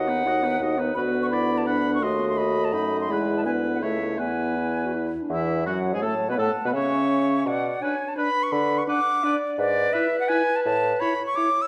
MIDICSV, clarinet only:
0, 0, Header, 1, 2, 480
1, 0, Start_track
1, 0, Key_signature, 3, "major"
1, 0, Tempo, 355240
1, 1301, Time_signature, 3, 2, 24, 8
1, 4668, Tempo, 366300
1, 8508, Tempo, 355450
1, 15650, End_track
2, 0, Start_track
2, 0, Title_t, "Clarinet"
2, 0, Program_c, 0, 71
2, 0, Note_on_c, 0, 66, 47
2, 119, Note_on_c, 0, 63, 43
2, 139, Note_off_c, 0, 66, 0
2, 359, Note_on_c, 0, 66, 45
2, 379, Note_off_c, 0, 63, 0
2, 592, Note_on_c, 0, 63, 43
2, 612, Note_off_c, 0, 66, 0
2, 826, Note_off_c, 0, 63, 0
2, 834, Note_on_c, 0, 66, 45
2, 1058, Note_on_c, 0, 63, 49
2, 1078, Note_off_c, 0, 66, 0
2, 1291, Note_off_c, 0, 63, 0
2, 1299, Note_on_c, 0, 66, 56
2, 1785, Note_on_c, 0, 64, 56
2, 1806, Note_off_c, 0, 66, 0
2, 2247, Note_off_c, 0, 64, 0
2, 2255, Note_on_c, 0, 62, 52
2, 2714, Note_off_c, 0, 62, 0
2, 2722, Note_on_c, 0, 66, 53
2, 3198, Note_off_c, 0, 66, 0
2, 3206, Note_on_c, 0, 66, 52
2, 3696, Note_on_c, 0, 63, 51
2, 3717, Note_off_c, 0, 66, 0
2, 4180, Note_on_c, 0, 64, 51
2, 4200, Note_off_c, 0, 63, 0
2, 5144, Note_off_c, 0, 64, 0
2, 5151, Note_on_c, 0, 64, 45
2, 5617, Note_off_c, 0, 64, 0
2, 5625, Note_on_c, 0, 64, 43
2, 6059, Note_off_c, 0, 64, 0
2, 6117, Note_on_c, 0, 64, 51
2, 6500, Note_on_c, 0, 66, 50
2, 6519, Note_off_c, 0, 64, 0
2, 6606, Note_off_c, 0, 66, 0
2, 6614, Note_on_c, 0, 64, 47
2, 6984, Note_on_c, 0, 62, 39
2, 7004, Note_off_c, 0, 64, 0
2, 7098, Note_off_c, 0, 62, 0
2, 7569, Note_on_c, 0, 73, 60
2, 8510, Note_on_c, 0, 78, 68
2, 8531, Note_off_c, 0, 73, 0
2, 8990, Note_on_c, 0, 76, 58
2, 9010, Note_off_c, 0, 78, 0
2, 9956, Note_off_c, 0, 76, 0
2, 9970, Note_on_c, 0, 74, 68
2, 10433, Note_off_c, 0, 74, 0
2, 10441, Note_on_c, 0, 73, 70
2, 10923, Note_on_c, 0, 71, 62
2, 10944, Note_off_c, 0, 73, 0
2, 11879, Note_off_c, 0, 71, 0
2, 11891, Note_on_c, 0, 78, 79
2, 12358, Note_on_c, 0, 74, 77
2, 12379, Note_off_c, 0, 78, 0
2, 12822, Note_off_c, 0, 74, 0
2, 12830, Note_on_c, 0, 71, 87
2, 14740, Note_on_c, 0, 73, 77
2, 14761, Note_off_c, 0, 71, 0
2, 15650, Note_off_c, 0, 73, 0
2, 15650, End_track
0, 0, End_of_file